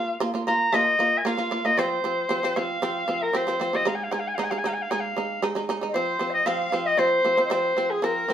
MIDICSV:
0, 0, Header, 1, 4, 480
1, 0, Start_track
1, 0, Tempo, 522193
1, 1630, Time_signature, 4, 2, 24, 8
1, 7661, End_track
2, 0, Start_track
2, 0, Title_t, "Soprano saxophone"
2, 0, Program_c, 0, 64
2, 0, Note_on_c, 0, 77, 88
2, 146, Note_off_c, 0, 77, 0
2, 438, Note_on_c, 0, 82, 90
2, 679, Note_on_c, 0, 75, 101
2, 692, Note_off_c, 0, 82, 0
2, 1085, Note_on_c, 0, 80, 63
2, 1099, Note_off_c, 0, 75, 0
2, 1159, Note_on_c, 0, 77, 86
2, 1173, Note_off_c, 0, 80, 0
2, 1522, Note_on_c, 0, 75, 86
2, 1536, Note_off_c, 0, 77, 0
2, 1642, Note_on_c, 0, 72, 85
2, 1655, Note_off_c, 0, 75, 0
2, 2364, Note_on_c, 0, 77, 93
2, 2378, Note_off_c, 0, 72, 0
2, 2965, Note_on_c, 0, 70, 79
2, 2979, Note_off_c, 0, 77, 0
2, 3096, Note_on_c, 0, 72, 87
2, 3110, Note_off_c, 0, 70, 0
2, 3455, Note_on_c, 0, 75, 82
2, 3469, Note_off_c, 0, 72, 0
2, 3557, Note_off_c, 0, 75, 0
2, 3563, Note_on_c, 0, 77, 65
2, 3631, Note_on_c, 0, 80, 64
2, 3644, Note_off_c, 0, 77, 0
2, 3711, Note_on_c, 0, 77, 65
2, 3725, Note_off_c, 0, 80, 0
2, 3786, Note_on_c, 0, 80, 64
2, 3800, Note_off_c, 0, 77, 0
2, 3855, Note_on_c, 0, 77, 73
2, 3869, Note_off_c, 0, 80, 0
2, 3933, Note_on_c, 0, 80, 62
2, 3946, Note_off_c, 0, 77, 0
2, 4000, Note_on_c, 0, 77, 61
2, 4013, Note_off_c, 0, 80, 0
2, 4080, Note_on_c, 0, 80, 70
2, 4094, Note_off_c, 0, 77, 0
2, 4142, Note_on_c, 0, 77, 63
2, 4156, Note_off_c, 0, 80, 0
2, 4209, Note_on_c, 0, 80, 71
2, 4223, Note_off_c, 0, 77, 0
2, 4296, Note_on_c, 0, 77, 65
2, 4310, Note_off_c, 0, 80, 0
2, 4353, Note_on_c, 0, 80, 61
2, 4367, Note_off_c, 0, 77, 0
2, 4431, Note_on_c, 0, 77, 70
2, 4445, Note_off_c, 0, 80, 0
2, 4510, Note_on_c, 0, 80, 73
2, 4524, Note_off_c, 0, 77, 0
2, 4596, Note_on_c, 0, 77, 82
2, 4610, Note_off_c, 0, 80, 0
2, 4991, Note_off_c, 0, 77, 0
2, 5461, Note_on_c, 0, 72, 85
2, 5801, Note_off_c, 0, 72, 0
2, 5829, Note_on_c, 0, 75, 84
2, 5942, Note_on_c, 0, 77, 87
2, 5955, Note_off_c, 0, 75, 0
2, 6313, Note_on_c, 0, 75, 84
2, 6327, Note_off_c, 0, 77, 0
2, 6423, Note_on_c, 0, 72, 96
2, 6437, Note_off_c, 0, 75, 0
2, 6904, Note_off_c, 0, 72, 0
2, 6909, Note_on_c, 0, 72, 80
2, 7263, Note_on_c, 0, 68, 74
2, 7277, Note_off_c, 0, 72, 0
2, 7390, Note_on_c, 0, 70, 83
2, 7403, Note_off_c, 0, 68, 0
2, 7661, Note_off_c, 0, 70, 0
2, 7661, End_track
3, 0, Start_track
3, 0, Title_t, "Dizi"
3, 0, Program_c, 1, 73
3, 5404, Note_on_c, 1, 75, 52
3, 5466, Note_on_c, 1, 72, 81
3, 5480, Note_off_c, 1, 75, 0
3, 5795, Note_on_c, 1, 77, 61
3, 5809, Note_off_c, 1, 72, 0
3, 5822, Note_on_c, 1, 75, 82
3, 5836, Note_off_c, 1, 77, 0
3, 5939, Note_on_c, 1, 77, 87
3, 5953, Note_off_c, 1, 75, 0
3, 6288, Note_off_c, 1, 77, 0
3, 6293, Note_on_c, 1, 75, 80
3, 6423, Note_on_c, 1, 72, 80
3, 6436, Note_off_c, 1, 75, 0
3, 6842, Note_off_c, 1, 72, 0
3, 6847, Note_on_c, 1, 75, 51
3, 6900, Note_off_c, 1, 75, 0
3, 6900, Note_on_c, 1, 75, 65
3, 6942, Note_on_c, 1, 72, 71
3, 6951, Note_off_c, 1, 75, 0
3, 7265, Note_on_c, 1, 68, 67
3, 7279, Note_off_c, 1, 72, 0
3, 7385, Note_on_c, 1, 72, 71
3, 7398, Note_off_c, 1, 68, 0
3, 7418, Note_on_c, 1, 70, 77
3, 7427, Note_off_c, 1, 72, 0
3, 7661, Note_off_c, 1, 70, 0
3, 7661, End_track
4, 0, Start_track
4, 0, Title_t, "Shamisen"
4, 0, Program_c, 2, 106
4, 0, Note_on_c, 2, 58, 66
4, 0, Note_on_c, 2, 65, 74
4, 138, Note_off_c, 2, 58, 0
4, 143, Note_off_c, 2, 65, 0
4, 187, Note_on_c, 2, 58, 93
4, 194, Note_on_c, 2, 65, 103
4, 284, Note_off_c, 2, 58, 0
4, 287, Note_off_c, 2, 65, 0
4, 310, Note_on_c, 2, 58, 65
4, 320, Note_on_c, 2, 65, 73
4, 405, Note_off_c, 2, 58, 0
4, 410, Note_off_c, 2, 65, 0
4, 431, Note_on_c, 2, 58, 62
4, 439, Note_on_c, 2, 65, 74
4, 622, Note_off_c, 2, 58, 0
4, 626, Note_off_c, 2, 65, 0
4, 667, Note_on_c, 2, 58, 84
4, 678, Note_on_c, 2, 65, 97
4, 860, Note_off_c, 2, 58, 0
4, 865, Note_off_c, 2, 65, 0
4, 908, Note_on_c, 2, 58, 67
4, 919, Note_on_c, 2, 65, 75
4, 1101, Note_off_c, 2, 58, 0
4, 1106, Note_off_c, 2, 65, 0
4, 1148, Note_on_c, 2, 58, 87
4, 1162, Note_on_c, 2, 65, 92
4, 1245, Note_off_c, 2, 58, 0
4, 1252, Note_off_c, 2, 65, 0
4, 1263, Note_on_c, 2, 58, 62
4, 1272, Note_on_c, 2, 65, 75
4, 1362, Note_off_c, 2, 58, 0
4, 1367, Note_off_c, 2, 65, 0
4, 1389, Note_on_c, 2, 58, 67
4, 1398, Note_on_c, 2, 65, 80
4, 1485, Note_off_c, 2, 58, 0
4, 1489, Note_off_c, 2, 65, 0
4, 1514, Note_on_c, 2, 58, 64
4, 1522, Note_on_c, 2, 65, 73
4, 1608, Note_off_c, 2, 58, 0
4, 1612, Note_off_c, 2, 65, 0
4, 1631, Note_on_c, 2, 53, 86
4, 1642, Note_on_c, 2, 60, 100
4, 1822, Note_off_c, 2, 53, 0
4, 1828, Note_off_c, 2, 60, 0
4, 1875, Note_on_c, 2, 53, 64
4, 1884, Note_on_c, 2, 60, 74
4, 2065, Note_off_c, 2, 53, 0
4, 2069, Note_off_c, 2, 60, 0
4, 2107, Note_on_c, 2, 53, 84
4, 2118, Note_on_c, 2, 60, 96
4, 2204, Note_off_c, 2, 53, 0
4, 2210, Note_off_c, 2, 60, 0
4, 2236, Note_on_c, 2, 53, 62
4, 2245, Note_on_c, 2, 60, 76
4, 2329, Note_off_c, 2, 53, 0
4, 2333, Note_off_c, 2, 60, 0
4, 2355, Note_on_c, 2, 53, 73
4, 2362, Note_on_c, 2, 60, 82
4, 2545, Note_off_c, 2, 53, 0
4, 2548, Note_off_c, 2, 60, 0
4, 2593, Note_on_c, 2, 53, 93
4, 2600, Note_on_c, 2, 60, 97
4, 2784, Note_off_c, 2, 53, 0
4, 2787, Note_off_c, 2, 60, 0
4, 2829, Note_on_c, 2, 53, 70
4, 2836, Note_on_c, 2, 60, 79
4, 3022, Note_off_c, 2, 53, 0
4, 3025, Note_off_c, 2, 60, 0
4, 3065, Note_on_c, 2, 53, 76
4, 3075, Note_on_c, 2, 60, 90
4, 3164, Note_off_c, 2, 53, 0
4, 3169, Note_off_c, 2, 60, 0
4, 3189, Note_on_c, 2, 53, 68
4, 3198, Note_on_c, 2, 60, 74
4, 3286, Note_off_c, 2, 53, 0
4, 3290, Note_off_c, 2, 60, 0
4, 3306, Note_on_c, 2, 53, 64
4, 3318, Note_on_c, 2, 60, 77
4, 3404, Note_off_c, 2, 53, 0
4, 3411, Note_off_c, 2, 60, 0
4, 3431, Note_on_c, 2, 53, 61
4, 3443, Note_on_c, 2, 60, 70
4, 3527, Note_off_c, 2, 53, 0
4, 3533, Note_off_c, 2, 60, 0
4, 3542, Note_on_c, 2, 56, 91
4, 3554, Note_on_c, 2, 63, 95
4, 3739, Note_off_c, 2, 56, 0
4, 3745, Note_off_c, 2, 63, 0
4, 3782, Note_on_c, 2, 56, 62
4, 3791, Note_on_c, 2, 63, 83
4, 3979, Note_off_c, 2, 56, 0
4, 3983, Note_off_c, 2, 63, 0
4, 4025, Note_on_c, 2, 56, 92
4, 4036, Note_on_c, 2, 63, 88
4, 4124, Note_off_c, 2, 56, 0
4, 4130, Note_off_c, 2, 63, 0
4, 4146, Note_on_c, 2, 56, 68
4, 4156, Note_on_c, 2, 63, 71
4, 4245, Note_off_c, 2, 56, 0
4, 4250, Note_off_c, 2, 63, 0
4, 4266, Note_on_c, 2, 56, 70
4, 4278, Note_on_c, 2, 63, 78
4, 4461, Note_off_c, 2, 56, 0
4, 4467, Note_off_c, 2, 63, 0
4, 4513, Note_on_c, 2, 56, 89
4, 4520, Note_on_c, 2, 63, 95
4, 4704, Note_off_c, 2, 56, 0
4, 4708, Note_off_c, 2, 63, 0
4, 4748, Note_on_c, 2, 56, 65
4, 4759, Note_on_c, 2, 63, 68
4, 4942, Note_off_c, 2, 56, 0
4, 4947, Note_off_c, 2, 63, 0
4, 4986, Note_on_c, 2, 56, 85
4, 4995, Note_on_c, 2, 63, 98
4, 5085, Note_off_c, 2, 56, 0
4, 5090, Note_off_c, 2, 63, 0
4, 5104, Note_on_c, 2, 56, 74
4, 5114, Note_on_c, 2, 63, 72
4, 5204, Note_off_c, 2, 56, 0
4, 5209, Note_off_c, 2, 63, 0
4, 5230, Note_on_c, 2, 56, 78
4, 5238, Note_on_c, 2, 63, 80
4, 5327, Note_off_c, 2, 56, 0
4, 5331, Note_off_c, 2, 63, 0
4, 5344, Note_on_c, 2, 56, 70
4, 5357, Note_on_c, 2, 63, 73
4, 5444, Note_off_c, 2, 56, 0
4, 5450, Note_off_c, 2, 63, 0
4, 5461, Note_on_c, 2, 53, 77
4, 5476, Note_on_c, 2, 60, 91
4, 5658, Note_off_c, 2, 53, 0
4, 5666, Note_off_c, 2, 60, 0
4, 5693, Note_on_c, 2, 53, 71
4, 5705, Note_on_c, 2, 60, 77
4, 5894, Note_off_c, 2, 53, 0
4, 5900, Note_off_c, 2, 60, 0
4, 5938, Note_on_c, 2, 53, 89
4, 5946, Note_on_c, 2, 60, 85
4, 6137, Note_off_c, 2, 53, 0
4, 6141, Note_off_c, 2, 60, 0
4, 6179, Note_on_c, 2, 53, 67
4, 6189, Note_on_c, 2, 60, 79
4, 6377, Note_off_c, 2, 53, 0
4, 6382, Note_off_c, 2, 60, 0
4, 6410, Note_on_c, 2, 53, 86
4, 6422, Note_on_c, 2, 60, 86
4, 6613, Note_off_c, 2, 53, 0
4, 6619, Note_off_c, 2, 60, 0
4, 6660, Note_on_c, 2, 53, 62
4, 6669, Note_on_c, 2, 60, 72
4, 6762, Note_off_c, 2, 53, 0
4, 6766, Note_off_c, 2, 60, 0
4, 6779, Note_on_c, 2, 53, 63
4, 6787, Note_on_c, 2, 60, 73
4, 6881, Note_off_c, 2, 53, 0
4, 6885, Note_off_c, 2, 60, 0
4, 6894, Note_on_c, 2, 53, 78
4, 6903, Note_on_c, 2, 60, 101
4, 7094, Note_off_c, 2, 53, 0
4, 7099, Note_off_c, 2, 60, 0
4, 7139, Note_on_c, 2, 53, 61
4, 7148, Note_on_c, 2, 60, 75
4, 7337, Note_off_c, 2, 53, 0
4, 7341, Note_off_c, 2, 60, 0
4, 7374, Note_on_c, 2, 53, 80
4, 7388, Note_on_c, 2, 60, 89
4, 7574, Note_off_c, 2, 53, 0
4, 7582, Note_off_c, 2, 60, 0
4, 7615, Note_on_c, 2, 53, 67
4, 7628, Note_on_c, 2, 60, 78
4, 7661, Note_off_c, 2, 53, 0
4, 7661, Note_off_c, 2, 60, 0
4, 7661, End_track
0, 0, End_of_file